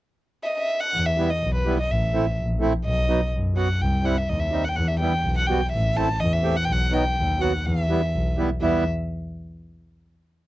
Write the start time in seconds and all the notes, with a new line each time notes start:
0.43 D#5 E5
0.58 E5
0.81 F#5
0.95 E2
1.06 E5
1.17 G3 B3 E4
1.30 D#5
1.42 B1
1.55 B4
1.65 G3 B3 E4
1.80 D#5
1.90 A1 E5
2.13 A3 C4 E4
2.38 A#1
2.60 A3 C4 E4
2.85 B1 D#5
3.08 F#3 B3 D#4
3.33 F#2
3.54 F#3 B3 F#4 F#5
3.80 C2 G5
4.03 G3 C4 E4 F#5
4.18 E5
4.28 D#2 D#5
4.39 E5
4.51 G3 C4 D#4
4.64 F#5
4.69 G5
4.76 E2 F#5
4.88 E5
5.00 G3 B3 E4 G5
5.24 B1
5.37 F#5
5.47 G3 B3 F#4 G5
5.72 A1 E5
5.96 A3 C4 E4 A5
6.20 E2 D#5
6.33 E5
6.42 A3 C4 G4
6.56 F#5
6.65 B1 G5
6.72 F#5
6.91 F#3 B3 D#4 G5
7.17 D#2
7.39 F#3 B3 F#4 F#5
7.65 E2 E5
7.89 G3 B3 E4
8.13 B1
8.37 G3 B3 E4
8.61 E2 G3 B3 E4 E5